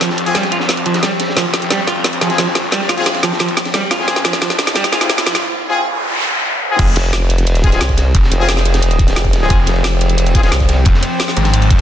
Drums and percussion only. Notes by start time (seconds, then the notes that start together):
0.01 snare, closed hi-hat, ride
0.10 snare
0.17 closed hi-hat, ride
0.26 closed hi-hat
0.35 snare, closed hi-hat, ride
0.43 snare, closed hi-hat
0.52 closed hi-hat, ride
0.60 snare
0.69 snare, closed hi-hat, ride
0.77 closed hi-hat
0.86 closed hi-hat, ride
0.94 snare, closed hi-hat
1.03 snare, closed hi-hat, ride
1.20 snare, closed hi-hat, ride
1.29 snare
1.37 snare, closed hi-hat, ride
1.53 snare, closed hi-hat, ride
1.62 closed hi-hat, ride
1.70 snare, closed hi-hat, ride
1.87 snare, closed hi-hat, ride
2.04 snare, closed hi-hat, ride
2.13 closed hi-hat
2.21 snare, closed hi-hat, ride
2.30 snare, closed hi-hat
2.38 snare, closed hi-hat, ride
2.47 snare
2.55 snare, closed hi-hat, ride
2.71 snare, closed hi-hat, ride
2.81 snare
2.89 snare, closed hi-hat, ride
2.98 closed hi-hat
3.06 snare, closed hi-hat, ride
3.15 snare, closed hi-hat
3.23 snare, closed hi-hat, ride
3.32 snare
3.39 snare, closed hi-hat, ride
3.48 closed hi-hat
3.57 snare, closed hi-hat, ride
3.65 snare, closed hi-hat
3.74 snare, closed hi-hat, ride
3.91 snare, closed hi-hat, ride
4.00 snare
4.08 snare, closed hi-hat, ride
4.16 snare
4.24 snare, closed hi-hat, ride
4.33 snare, closed hi-hat, ride
4.41 snare, closed hi-hat, ride
4.50 snare
4.59 snare, closed hi-hat, ride
4.67 snare, ride
4.74 snare, closed hi-hat, ride
4.84 snare, closed hi-hat
4.92 snare, closed hi-hat, ride
5.01 snare, closed hi-hat
5.09 snare, closed hi-hat, ride
5.18 snare, ride
5.26 snare, closed hi-hat
5.35 snare, ride
6.79 kick, closed hi-hat, crash, ride
6.96 snare, closed hi-hat, ride
7.04 ride
7.13 snare, closed hi-hat, ride
7.30 closed hi-hat, ride
7.38 closed hi-hat
7.46 closed hi-hat, ride
7.55 closed hi-hat
7.64 kick, closed hi-hat, ride
7.72 snare, closed hi-hat
7.80 snare, closed hi-hat, ride
7.89 kick, snare
7.97 snare, closed hi-hat, ride
8.15 kick, closed hi-hat, ride
8.23 snare
8.32 closed hi-hat, ride
8.49 snare, closed hi-hat
8.57 snare
8.65 closed hi-hat, ride
8.74 snare, closed hi-hat
8.82 closed hi-hat, ride
8.91 closed hi-hat
8.99 kick, closed hi-hat, ride
9.08 snare, closed hi-hat
9.16 snare, closed hi-hat
9.25 kick
9.33 snare, closed hi-hat, ride
9.42 snare
9.50 kick, closed hi-hat, ride
9.66 snare, closed hi-hat, ride
9.76 ride
9.84 snare, closed hi-hat, ride
10.01 closed hi-hat, ride
10.10 closed hi-hat
10.18 closed hi-hat, ride
10.26 closed hi-hat
10.35 kick, closed hi-hat, ride
10.43 snare, closed hi-hat
10.52 snare, closed hi-hat, ride
10.60 kick, snare
10.69 snare, closed hi-hat, ride
10.85 kick, closed hi-hat, ride
10.94 snare
11.03 closed hi-hat, ride
11.20 snare, closed hi-hat
11.28 snare
11.36 closed hi-hat, ride
11.44 snare, closed hi-hat
11.54 closed hi-hat, ride
11.62 closed hi-hat
11.70 kick, closed hi-hat, ride